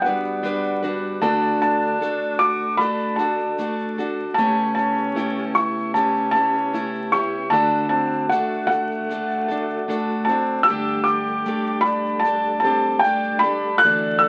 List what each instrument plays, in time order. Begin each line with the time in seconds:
Already playing: tonewheel organ G2 D3 B3 D4
0.02 alto saxophone B3, steel-string acoustic guitar B4, felt piano F#5, shaker
0.06 steel-string acoustic guitar G3 D4 F#4
0.25 shaker
0.43 steel-string acoustic guitar G3 D4 F#4 B4, shaker
0.65 shaker
0.83 steel-string acoustic guitar G3 D4 F#4 B4, shaker
1.21 tonewheel organ D2 A3, steel-string acoustic guitar D3 A3 D4 F#4 A4, alto saxophone D4, felt piano A5, shaker
1.42 shaker
1.61 alto saxophone D4, felt piano A5, shaker
1.82 shaker
2.00 steel-string acoustic guitar A3 D4 F#4 A4, shaker
2.21 shaker
2.39 alto saxophone F#4, felt piano D6, shaker
2.61 shaker
2.77 steel-string acoustic guitar A3 D4 F#4 A4, alto saxophone D4, felt piano B5, shaker
3.00 shaker
3.16 alto saxophone D4, steel-string acoustic guitar F#4 A4, felt piano A5, shaker
3.20 steel-string acoustic guitar D4
3.40 shaker
3.59 steel-string acoustic guitar A3 D4 F#4 A4, shaker
3.79 shaker
3.98 steel-string acoustic guitar D4 F#4 A4, shaker
4.34 steel-string acoustic guitar C#3 A3, alto saxophone C#4, felt piano A5, shaker
4.39 tonewheel organ C#2 C#3 B3 G4, steel-string acoustic guitar C#4 E4 G4
4.58 shaker
4.75 alto saxophone C#4, felt piano A5, shaker
4.97 shaker
5.15 steel-string acoustic guitar A3 C#4 E4 G4, shaker
5.37 shaker
5.54 alto saxophone E4, felt piano C#6, shaker
5.77 shaker
5.94 steel-string acoustic guitar A3 C#4 E4 G4, alto saxophone C#4, felt piano A5, shaker
6.16 shaker
6.31 alto saxophone C#4, steel-string acoustic guitar G4, felt piano A5, shaker
6.37 steel-string acoustic guitar C#4 E4
6.55 shaker
6.73 steel-string acoustic guitar A3 C#4 E4 G4, shaker
6.95 shaker
7.12 steel-string acoustic guitar C#4 E4 G4, alto saxophone E4, felt piano C#6, shaker
7.50 steel-string acoustic guitar D3 A3 D4 F#4 A4, tonewheel organ D3 A3 F#4, alto saxophone D4, felt piano A5, shaker
7.54 tonewheel organ D2
7.74 shaker
7.89 alto saxophone C4, felt piano A5
8.13 shaker
8.29 alto saxophone A3, steel-string acoustic guitar A3 D4 F#4, felt piano F#5, shaker
8.33 steel-string acoustic guitar A4
8.53 shaker
8.67 alto saxophone A3, felt piano F#5
8.71 shaker
8.91 shaker
9.09 steel-string acoustic guitar A3 D4 F#4 A4, shaker
9.31 shaker
9.48 steel-string acoustic guitar D4 F#4 A4, shaker
9.70 shaker
9.88 steel-string acoustic guitar A3 D4 F#4 A4, shaker
10.10 shaker
10.25 alto saxophone C4, steel-string acoustic guitar A4, felt piano A5
10.29 steel-string acoustic guitar D4 F#4, shaker
10.63 alto saxophone G4, felt piano E6
10.67 tonewheel organ G2 A3 G4, steel-string acoustic guitar G2 D3 A3 D4 G4 A4, shaker
10.87 shaker
11.03 alto saxophone G4, felt piano D6
11.07 shaker
11.27 shaker
11.46 steel-string acoustic guitar A3 D4 G4 A4, shaker
11.66 shaker
11.81 alto saxophone D4, felt piano B5
11.86 shaker
12.06 shaker
12.20 alto saxophone D4, felt piano A5
12.25 steel-string acoustic guitar A3 D4 G4 A4, shaker
12.45 shaker
12.60 alto saxophone C4, felt piano A5
12.64 steel-string acoustic guitar A3 D4 G4 A4, shaker
12.99 alto saxophone D4, felt piano G5
13.04 steel-string acoustic guitar A3 D4 G4 A4, shaker
13.24 shaker
13.39 alto saxophone D4, felt piano B5
13.43 steel-string acoustic guitar A3 D4 G4 A4, shaker
13.78 alto saxophone A4, felt piano F#6
13.83 tonewheel organ D2 E4 F#4, steel-string acoustic guitar D3 E3 A3 D4 F#4 D5, shaker
14.04 shaker
14.19 alto saxophone A4, felt piano E6, shaker